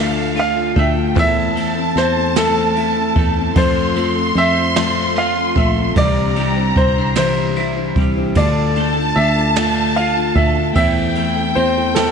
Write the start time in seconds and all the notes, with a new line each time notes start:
Already playing: D2 D3 A3 D4 F4 A4 E5 F5
0.35 A3 D4 F4 A4, ride
0.40 F5
0.56 D4 F4 A4
0.76 D2 A3 E5 G5, kick, ride
0.94 D4 F4 A4
1.15 E2 E3 A3 C4 E4 A4 A5, kick, ride
1.19 E5
1.55 A3 C4 E4 A4, ride
1.75 C4 E4 A4
1.96 E2 C4 C5, snare, ride
2.15 C4 E4 A4
2.35 E3 A3 C4 E4 A4, snare, ride
2.75 A3 C4 E4 A4, ride
2.95 C4 E4 A4
3.16 E2 A3, kick, ride
3.35 C4 E4 A4
3.55 F2 F3 A3 C4 F4 A4 C5 C6, kick, ride
3.95 A3 C4 F4 A4, ride
4.15 C4 F4 A4
4.35 F2 C4 E5, ride
4.56 C4 F4 A4
4.76 F3 A3 C4 F4 A4, snare, ride
5.16 A3 C4 F4 A4 F5, ride
5.36 C4 F4 A4
5.56 A#1 A3 E5, kick, ride
5.75 C4 F4 A4
5.96 C2 C3 E3 G3 D4 E4 C5 D5 A#5, kick, ride
6.36 G3 D4 E4 C5, ride
6.56 G3 D4 E4 C5
6.76 C2 C4 C5, kick, ride
6.96 G3 D4 E4 C5
7.15 C3 E3 G3 D4 E4 C5, snare, ride
7.56 G3 D4 E4 C5, ride
7.76 G3 D4 E4 C5
7.96 C2 G3, kick, ride
8.16 G3 D4 E4 C5
8.35 D2 D3 A3 D4 F4 A4 D5 A5, kick, ride
8.76 A3 D4 F4 A4, ride
8.96 D4 F4 A4
9.16 D2 D4 E5, ride
9.36 D4 F4 A4
9.56 D3 A3 D4 F4 A4, snare, ride
9.96 A3 D4 F4 A4 F5, ride
10.16 D4 F4 A4
10.35 D2 A3 E5, kick, ride
10.55 D4 F4 A4
10.75 E2 E3 A3 C4 E4 A4 E5 G5, kick, ride
11.15 A3 C4 E4 A4, ride
11.36 C4 E4 A4
11.55 E2 C4 C5, ride
11.76 C4 E4 A4
11.95 E3 A3 C4 E4 A4, snare, ride